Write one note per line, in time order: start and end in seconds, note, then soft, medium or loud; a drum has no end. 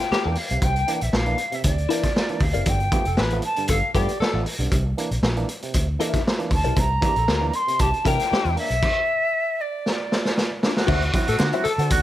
0.00 0.04 A#3 soft
0.00 0.05 D4 soft
0.00 0.38 G5 loud
0.11 0.32 G4 loud
0.11 muted fingered electric bass stroke medium
0.11 snare loud
0.25 0.35 E2 medium
0.25 0.36 E3 medium
0.25 0.36 A#3 medium
0.25 0.36 D4 medium
0.35 0.65 F5 medium
0.35 open hi-hat medium
0.50 0.60 B1 medium
0.50 0.62 C3 medium
0.50 closed hi-hat soft
0.62 0.83 C2 loud
0.62 0.75 C3 medium
0.62 1.03 G5 loud
0.62 kick loud
0.62 closed hi-hat medium
0.76 0.81 A#3 soft
0.76 0.81 D4 soft
0.76 closed hi-hat soft
0.88 1.00 E3 medium
0.88 1.01 A#3 medium
0.88 1.01 D4 medium
0.88 closed hi-hat medium
1.01 1.11 A#1 medium
1.01 1.16 E5 medium
1.01 closed hi-hat soft
1.13 1.34 A#1 medium
1.13 1.55 F5 medium
1.13 snare loud
1.26 1.38 E3 medium
1.26 1.38 A#3 medium
1.26 1.38 D4 medium
1.26 closed hi-hat soft
1.38 closed hi-hat medium
1.52 1.63 C3 medium
1.52 1.64 E5 medium
1.52 closed hi-hat soft
1.64 1.85 D2 loud
1.64 1.78 C3 medium
1.64 2.44 D5 medium
1.64 kick medium
1.64 closed hi-hat medium
1.78 closed hi-hat soft
1.89 2.03 E3 medium
1.89 2.03 A#3 medium
1.89 2.03 D4 medium
1.89 2.04 E4 medium
1.89 2.05 A#4 medium
1.89 2.05 E5 medium
1.89 closed hi-hat medium
2.03 2.09 A#3 soft
2.03 2.09 D4 soft
2.03 kick medium
2.03 snare soft
2.03 closed hi-hat medium
2.16 snare loud
2.29 2.41 E3 medium
2.29 2.41 A#3 medium
2.29 2.41 D4 medium
2.29 closed hi-hat soft
2.40 2.52 D2 medium
2.40 2.70 F5 medium
2.40 kick loud
2.40 open hi-hat medium
2.53 2.64 F#1 medium
2.53 2.67 C3 medium
2.53 2.68 E4 medium
2.53 2.68 A#4 medium
2.53 2.67 D5 medium
2.53 closed hi-hat medium
2.66 2.87 G1 loud
2.66 2.80 G2 medium
2.66 2.80 D3 medium
2.66 3.18 G5 medium
2.66 kick loud
2.66 closed hi-hat medium
2.80 2.86 A3 soft
2.80 2.86 B3 soft
2.80 closed hi-hat soft
2.92 3.05 F3 medium
2.92 3.05 A3 medium
2.92 3.06 B3 medium
2.92 3.04 G4 medium
2.92 kick loud
2.92 closed hi-hat medium
3.05 3.16 F1 medium
3.05 3.16 A4 medium
3.05 closed hi-hat soft
3.17 3.39 A1 medium
3.17 3.38 B4 loud
3.17 snare loud
3.30 3.43 F3 medium
3.30 3.44 A3 medium
3.30 3.43 B3 medium
3.30 closed hi-hat soft
3.42 3.68 A5 loud
3.42 closed hi-hat medium
3.56 3.69 G2 medium
3.56 3.69 D3 medium
3.56 closed hi-hat soft
3.68 3.80 G1 medium
3.68 3.83 G2 medium
3.68 3.83 D3 medium
3.68 3.77 A4 loud
3.68 3.93 F5 medium
3.68 kick loud
3.68 closed hi-hat loud
3.94 4.06 G2 medium
3.94 4.08 F3 medium
3.94 4.07 A3 medium
3.94 4.08 B3 medium
3.94 4.15 G4 loud
3.94 4.10 A4 medium
3.94 4.10 B4 medium
3.94 4.43 D5 medium
3.94 4.10 G5 medium
3.94 kick medium
3.94 closed hi-hat medium
4.08 4.13 A3 soft
4.08 4.14 B3 soft
4.08 closed hi-hat medium
4.20 4.41 A4 loud
4.20 muted fingered electric bass stroke soft
4.20 snare loud
4.34 4.44 A1 medium
4.34 4.46 F3 medium
4.34 4.46 A3 medium
4.34 4.46 B3 medium
4.46 open hi-hat medium
4.59 4.69 B1 medium
4.59 4.71 G2 medium
4.59 4.71 D3 medium
4.59 closed hi-hat medium
4.71 4.93 C2 loud
4.71 4.85 C3 medium
4.71 kick loud
4.71 closed hi-hat medium
4.85 4.90 A#3 soft
4.85 4.90 D4 soft
4.97 5.10 E3 medium
4.97 5.11 A#3 medium
4.97 5.11 D4 medium
4.97 closed hi-hat medium
5.11 5.21 A#1 medium
5.11 closed hi-hat soft
5.22 5.43 A#1 loud
5.22 snare loud
5.37 5.48 E3 medium
5.37 5.49 A#3 medium
5.37 5.49 D4 medium
5.37 closed hi-hat soft
5.49 closed hi-hat medium
5.62 5.74 C3 medium
5.62 closed hi-hat medium
5.74 5.95 D2 medium
5.74 5.88 C3 soft
5.74 kick loud
5.74 closed hi-hat medium
5.99 6.13 E3 medium
5.99 6.13 A#3 medium
5.99 6.13 D4 medium
5.99 6.21 E4 medium
5.99 6.21 A#4 medium
5.99 6.21 E5 loud
5.99 closed hi-hat medium
6.14 kick medium
6.14 snare soft
6.14 closed hi-hat soft
6.27 snare loud
6.38 6.51 E3 medium
6.38 6.51 A#3 medium
6.38 6.51 D4 medium
6.38 closed hi-hat soft
6.50 6.62 D2 medium
6.50 6.81 A5 loud
6.50 kick loud
6.50 open hi-hat medium
6.64 6.75 B1 medium
6.64 6.74 C3 medium
6.64 6.79 E4 medium
6.64 6.78 A#4 medium
6.64 6.78 D5 medium
6.64 closed hi-hat medium
6.76 6.98 C2 loud
6.76 6.89 C3 medium
6.76 7.56 A#5 loud
6.76 kick loud
6.76 closed hi-hat medium
6.90 6.95 A#3 soft
6.90 6.95 D4 soft
7.01 7.15 E3 medium
7.01 7.15 A#3 medium
7.01 7.15 D4 medium
7.01 7.15 G4 medium
7.01 kick loud
7.01 closed hi-hat medium
7.16 7.26 A#1 medium
7.16 7.27 A4 medium
7.16 closed hi-hat soft
7.28 7.49 D2 loud
7.28 7.49 A#4 loud
7.28 snare loud
7.41 7.53 E3 medium
7.41 7.53 A#3 medium
7.41 7.53 D4 medium
7.53 7.81 C6 loud
7.53 closed hi-hat medium
7.67 7.79 C3 medium
7.67 closed hi-hat soft
7.79 7.91 C2 medium
7.79 7.93 C3 medium
7.79 7.90 G4 medium
7.79 8.08 A5 loud
7.79 kick loud
7.79 closed hi-hat loud
7.94 closed hi-hat soft
8.05 8.17 C3 medium
8.05 8.19 E3 medium
8.05 8.18 A#3 medium
8.05 8.18 D4 medium
8.05 8.20 E4 medium
8.05 8.21 A#4 medium
8.05 8.27 A#4 loud
8.05 8.21 E5 medium
8.05 8.58 G5 loud
8.05 kick medium
8.05 closed hi-hat medium
8.19 8.24 A#3 soft
8.19 8.24 D4 soft
8.19 snare soft
8.19 closed hi-hat medium
8.30 8.44 A#3 medium
8.30 8.44 D4 medium
8.30 8.53 G4 loud
8.30 muted fingered electric bass stroke medium
8.30 snare loud
8.44 8.55 E2 medium
8.44 8.56 C3 medium
8.44 closed hi-hat soft
8.56 8.70 A#3 medium
8.56 8.70 D4 medium
8.56 9.62 E5 loud
8.56 open hi-hat medium
8.70 8.80 B1 medium
8.70 closed hi-hat medium
8.83 kick loud
8.83 crash medium
9.60 10.63 D5 medium
9.86 snare medium
10.12 snare medium
10.25 snare medium
10.37 snare medium
10.63 10.75 D4 medium
10.63 snare loud
10.75 11.11 F#4 medium
10.75 snare loud
10.87 11.09 D2 loud
10.87 11.01 D3 medium
10.87 11.02 F#4 medium
10.87 11.03 C5 medium
10.87 11.03 E5 loud
10.87 kick loud
10.87 crash loud
11.02 11.07 C4 soft
11.02 11.07 E4 soft
11.02 closed hi-hat soft
11.13 11.27 F#3 medium
11.13 11.27 C4 medium
11.13 11.27 E4 medium
11.13 11.66 F#4 loud
11.13 kick loud
11.13 closed hi-hat medium
11.28 11.38 A2 medium
11.28 11.36 A4 medium
11.28 closed hi-hat medium
11.39 11.51 D3 loud
11.39 snare loud
11.39 clap medium
11.53 11.65 F#3 medium
11.53 11.65 C4 medium
11.53 11.65 E4 medium
11.53 11.67 F#4 medium
11.53 11.67 C5 medium
11.53 11.66 E5 medium
11.53 closed hi-hat soft
11.64 11.73 A4 loud
11.64 11.93 A4 loud
11.64 muted fingered electric bass stroke soft
11.64 closed hi-hat medium
11.78 11.88 D3 loud
11.78 11.89 D3 medium
11.78 11.90 F#4 medium
11.78 11.90 C5 medium
11.78 11.89 F#5 medium
11.78 closed hi-hat medium
11.90 12.02 D2 medium
11.90 12.02 D3 medium
11.90 12.02 F#4 loud
11.90 kick loud
11.90 closed hi-hat loud